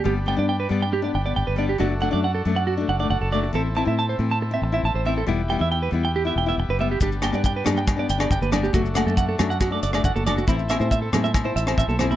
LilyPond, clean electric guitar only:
\new Staff \with { instrumentName = "Clean electric guitar" } { \time 4/4 \key g \major \tempo 4 = 138 g'16 r16 g''16 d''16 g''16 b'16 r16 g''16 g'16 d''16 g''16 d''16 g''16 b'16 d''16 g'16 | fis'16 r16 fis''16 d''16 fis''16 a'16 r16 fis''16 fis'16 r16 fis''16 d''16 fis''16 a'16 d''16 r16 | a'16 r16 a''16 e''16 a''16 c''16 r16 a''16 r16 e''16 r16 e''16 a''16 c''16 e''16 a'16 | r8 g''16 e''16 g''16 b'16 r16 g''16 g'16 e''16 g''16 e''16 r16 b'16 e''16 g'16 |
g'16 r16 g''16 d''16 g''16 b'16 r16 g''16 r16 d''16 g''16 d''16 g''16 b'16 d''16 g'16 | fis'16 r16 fis''16 a'16 fis''16 a'16 r16 fis''16 fis'16 d''16 d''16 d''16 fis''16 a'16 d''16 fis'16 | e'16 r16 e''16 c''16 e''16 a'16 r16 e''16 r16 c''16 e''16 c''16 e''16 a'16 c''16 e'16 | }